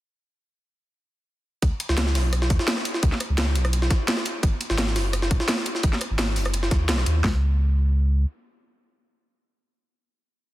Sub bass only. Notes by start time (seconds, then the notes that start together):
1.62 C#2
1.89 C#2
2.15 B1
2.50 E2
3.03 C#2
3.29 C#2
3.55 B1
4.43 G#1
4.70 G#1
4.96 F#1
5.31 B1
5.84 G#1
6.10 G#1
6.36 F#1
6.71 D#2
6.89 B1
7.06 D#2
7.24 C#2